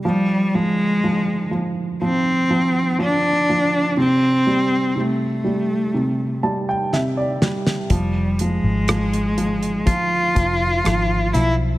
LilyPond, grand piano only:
<<
  \new Staff \with { instrumentName = "Grand piano" } { \time 4/4 \key f \lydian \tempo 4 = 61 r1 | r2 r8 a''16 g''16 e''16 d''8. | r1 | }
  \new Staff \with { instrumentName = "Grand piano" } { \clef bass \time 4/4 \key f \lydian f8 f8 f8 f8 f8 f8 f8 f8 | c8 g8 c8 g8 c8 g8 c8 g8 | f8 f8 f8 f8 f8 f8 f8 f8 | }
>>